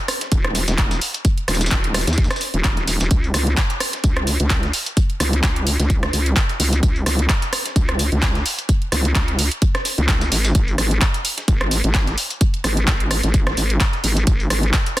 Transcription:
0.08 cross-stick, open hi-hat, tambourine
0.21 snare, closed hi-hat
0.32 D#1, kick, closed hi-hat, tambourine
0.45 cross-stick, closed hi-hat
0.55 snare, open hi-hat, tambourine
0.68 D#1, snare, closed hi-hat, tambourine
0.78 kick, snare, clap, closed hi-hat, tambourine
0.91 snare, closed hi-hat, tambourine
1.01 open hi-hat
1.14 closed hi-hat
1.25 kick, closed hi-hat, tambourine
1.38 closed hi-hat
1.48 D#1, cross-stick, snare, open hi-hat, tambourine
1.55 snare, tambourine
1.61 snare, closed hi-hat, tambourine
1.66 snare, tambourine
1.71 D#1, kick, clap, closed hi-hat
1.84 closed hi-hat
1.94 cross-stick, snare, open hi-hat, tambourine
2.01 snare, tambourine
2.07 D#2, snare, closed hi-hat, tambourine
2.13 snare, tambourine
2.18 kick, snare, closed hi-hat
2.24 snare, tambourine
2.31 cross-stick, snare, closed hi-hat, tambourine
2.36 snare, tambourine
2.41 snare, open hi-hat, tambourine
2.54 D#1, closed hi-hat
2.64 D#1, kick, snare, clap, closed hi-hat, tambourine
2.77 snare, closed hi-hat
2.87 D#1, snare, open hi-hat, tambourine
3.00 D#1, snare, closed hi-hat, tambourine
3.11 C#2, kick, closed hi-hat, tambourine
3.24 closed hi-hat
3.34 C#2, cross-stick, open hi-hat, tambourine
3.47 closed hi-hat
3.57 kick, snare, clap, closed hi-hat, tambourine
3.70 closed hi-hat
3.80 cross-stick, open hi-hat, tambourine
3.93 snare, closed hi-hat
4.04 C#2, kick, closed hi-hat, tambourine
4.17 cross-stick, closed hi-hat
4.27 open hi-hat, tambourine
4.40 C#2, closed hi-hat
4.50 kick, snare, clap, closed hi-hat, tambourine
4.63 snare, closed hi-hat
4.73 open hi-hat
4.86 closed hi-hat
4.97 kick, closed hi-hat, tambourine
5.10 closed hi-hat
5.20 C#2, cross-stick, open hi-hat, tambourine
5.33 closed hi-hat
5.43 C#2, kick, snare, clap, closed hi-hat, tambourine
5.56 closed hi-hat
5.67 open hi-hat, tambourine
5.79 C#2, snare, closed hi-hat
5.90 kick, closed hi-hat, tambourine
6.03 cross-stick, snare, closed hi-hat
6.13 C#2, snare, open hi-hat, tambourine
6.26 closed hi-hat
6.36 kick, snare, clap, closed hi-hat, tambourine
6.49 snare, closed hi-hat
6.60 C#2, open hi-hat, tambourine
6.73 closed hi-hat
6.83 C#2, kick, closed hi-hat, tambourine
6.96 closed hi-hat
7.06 C#2, cross-stick, open hi-hat, tambourine
7.19 closed hi-hat
7.29 kick, snare, clap, closed hi-hat, tambourine
7.42 closed hi-hat
7.53 cross-stick, open hi-hat, tambourine
7.66 snare, closed hi-hat
7.76 C#2, kick, closed hi-hat, tambourine
7.89 cross-stick, closed hi-hat
7.99 open hi-hat, tambourine
8.12 C#2, closed hi-hat
8.22 kick, snare, clap, closed hi-hat, tambourine
8.35 snare, closed hi-hat
8.46 open hi-hat
8.59 closed hi-hat
8.69 kick, closed hi-hat, tambourine
8.82 closed hi-hat
8.92 C#2, cross-stick, open hi-hat, tambourine
9.05 closed hi-hat
9.15 C#2, kick, snare, clap, closed hi-hat, tambourine
9.28 closed hi-hat
9.39 open hi-hat, tambourine
9.51 closed hi-hat
9.62 kick, closed hi-hat, tambourine
9.75 cross-stick, snare, closed hi-hat
9.85 snare, open hi-hat, tambourine
9.98 C#2, closed hi-hat
10.08 kick, snare, clap, closed hi-hat, tambourine
10.21 snare, closed hi-hat, tambourine
10.32 G#1, snare, open hi-hat, tambourine
10.45 snare, closed hi-hat, tambourine
10.55 G#1, kick, closed hi-hat, tambourine
10.68 closed hi-hat
10.78 G#1, cross-stick, open hi-hat, tambourine
10.91 closed hi-hat
11.01 kick, snare, clap, closed hi-hat, tambourine
11.14 closed hi-hat
11.25 open hi-hat, tambourine
11.38 snare, closed hi-hat
11.48 G#1, kick, closed hi-hat, tambourine
11.61 cross-stick, closed hi-hat
11.71 open hi-hat, tambourine
11.84 G#1, closed hi-hat
11.94 kick, snare, clap, closed hi-hat, tambourine
12.07 snare, closed hi-hat
12.18 open hi-hat
12.30 closed hi-hat
12.41 kick, closed hi-hat, tambourine
12.54 closed hi-hat
12.64 G#1, cross-stick, open hi-hat, tambourine
12.77 closed hi-hat
12.87 G#1, kick, snare, clap, closed hi-hat, tambourine
13.00 closed hi-hat
13.11 cross-stick, open hi-hat, tambourine
13.23 G#1, snare, closed hi-hat
13.34 kick, closed hi-hat, tambourine
13.47 cross-stick, snare, closed hi-hat
13.57 G#1, snare, open hi-hat, tambourine
13.70 closed hi-hat
13.80 kick, snare, clap, closed hi-hat, tambourine
13.93 snare, closed hi-hat
14.04 G#1, open hi-hat, tambourine
14.17 closed hi-hat
14.27 G#1, kick, closed hi-hat, tambourine
14.40 closed hi-hat
14.50 G#1, cross-stick, open hi-hat, tambourine
14.63 closed hi-hat
14.73 kick, snare, clap, closed hi-hat, tambourine
14.86 closed hi-hat
14.97 cross-stick, open hi-hat

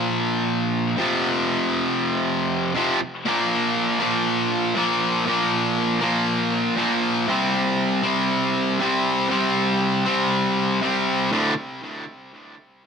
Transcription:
Already playing: A#2 F3 A#3
0.97 F2 C3 F3
2.74 F2 C3 F3
3.25 A#2 F3 A#3
4.00 A#2 F3 A#3
4.75 A#2 F3 A#3
5.26 A#2 F3 A#3
6.01 A#2 F3 A#3
6.77 A#2 F3 A#3
7.28 C3 G3 C4
8.03 C3 G3 C4
8.79 C3 G3 C4
9.29 C3 G3 C4
10.06 C3 G3 C4
10.81 C3 G3 C4
11.31 D2 A2 D3

